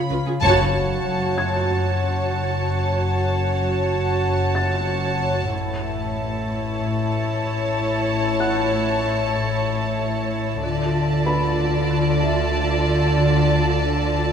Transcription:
0.00 0.41 C#5 soft
0.00 0.38 F5 medium
0.00 0.18 B5 medium
0.00 0.42 B5 soft
0.10 0.17 C#2 soft
0.10 0.29 C#3 soft
0.10 0.17 C#3 soft
0.10 0.18 F4 soft
0.10 0.17 B4 soft
0.26 0.33 C#3 soft
0.26 0.34 F4 soft
0.26 0.33 G#4 soft
0.41 5.49 F#1 medium
0.41 1.33 F#2 medium
0.41 0.61 F#2 medium
0.41 5.49 F#2 medium
0.41 5.50 F#4 medium
0.41 5.49 C#5 medium
0.41 5.48 F#5 medium
0.41 5.48 A5 medium
0.41 5.49 A5 soft
0.41 impact soft
0.75 0.93 F#2 soft
1.06 1.25 F#3 soft
1.38 1.57 F#2 soft
1.38 3.25 A5 soft
1.38 3.25 G#6 soft
1.70 1.89 F#2 medium
2.66 2.85 F#2 soft
2.98 3.17 F#2 medium
3.61 3.80 F#3 soft
3.93 4.12 F#2 soft
4.25 4.44 F#2 medium
4.55 4.76 F#2 soft
4.55 6.43 A6 soft
4.89 5.08 F#2 soft
5.20 5.40 F#2 soft
5.52 10.59 A1 soft
5.52 5.71 A2 medium
5.52 10.59 A2 soft
5.52 10.60 E4 medium
5.52 10.59 C#5 medium
5.52 10.59 C#5 soft
5.52 10.63 E5 soft
5.52 10.59 A5 medium
5.52 10.60 A5 soft
5.84 6.03 A2 soft
6.17 6.36 A3 soft
6.49 6.68 A2 soft
6.81 7.00 A2 medium
7.14 7.32 A2 soft
7.45 7.64 A2 soft
7.77 7.96 A2 soft
8.09 8.28 A2 medium
8.40 8.60 A2 soft
8.40 10.27 F#5 soft
8.40 10.27 F#6 soft
8.73 8.91 A3 soft
9.04 9.23 A2 soft
9.36 9.55 A2 medium
9.68 9.87 A2 soft
9.99 10.19 A2 soft
10.32 10.51 A2 soft
10.63 14.32 D2 medium
10.63 14.32 D3 medium
10.63 10.83 D3 medium
10.63 14.32 F4 soft
10.63 14.32 F4 medium
10.63 14.32 D5 soft
10.63 14.32 D5 medium
10.63 14.32 A5 medium
10.63 14.32 A5 soft
10.95 11.14 D3 soft
11.26 11.46 D4 soft
11.26 13.14 B4 soft
11.26 13.14 B5 medium
11.59 11.78 D3 soft
11.90 12.10 D3 medium
12.23 14.11 E5 soft
12.54 12.74 D3 medium
12.87 13.06 D3 soft
13.18 13.37 D3 medium
13.82 14.01 D4 soft
14.14 14.32 D3 soft

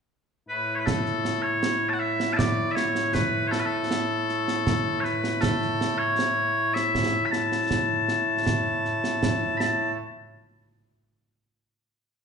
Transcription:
0.49 9.96 A2 medium
0.49 9.96 A3 medium
0.49 9.96 E4 medium
0.49 0.75 B4 medium
0.75 0.79 C#5 medium
0.79 0.86 B4 medium
0.86 1.42 A4 medium
0.86 concert bass drum medium
0.86 snare medium
1.06 snare soft
1.25 snare medium
1.42 1.89 C#5 medium
1.63 snare medium
1.89 1.93 A5 medium
1.93 1.99 F#5 medium
1.99 2.33 E5 medium
2.20 snare medium
2.33 2.71 D5 medium
2.33 2.37 A5 medium
2.39 concert bass drum medium
2.39 snare loud
2.71 3.13 C#5 medium
2.71 2.75 E5 medium
2.77 snare medium
2.95 snare medium
3.13 3.47 B4 medium
3.13 concert bass drum medium
3.13 snare medium
3.47 3.60 A4 medium
3.47 3.51 C#5 medium
3.53 snare medium
3.60 3.65 B4 medium
3.65 5.00 A4 medium
3.91 snare loud
4.29 snare soft
4.48 snare medium
4.67 concert bass drum medium
4.67 snare medium
5.00 5.41 B4 medium
5.00 5.04 C#5 medium
5.05 snare soft
5.24 snare medium
5.41 5.98 A4 medium
5.41 concert bass drum medium
5.41 snare loud
5.62 snare soft
5.81 snare medium
5.98 6.74 C#5 loud
6.19 snare medium
6.74 7.26 E5 medium
6.74 snare medium
6.95 concert bass drum medium
6.95 snare medium
7.26 7.31 B5 medium
7.31 9.57 A5 medium
7.31 snare medium
7.52 snare medium
7.71 concert bass drum soft
7.71 snare medium
8.08 snare medium
8.46 concert bass drum medium
8.46 snare medium
8.85 snare soft
9.04 snare medium
9.23 concert bass drum medium
9.23 snare loud
9.57 9.96 A5 medium
9.57 9.60 B5 medium
9.57 snare medium

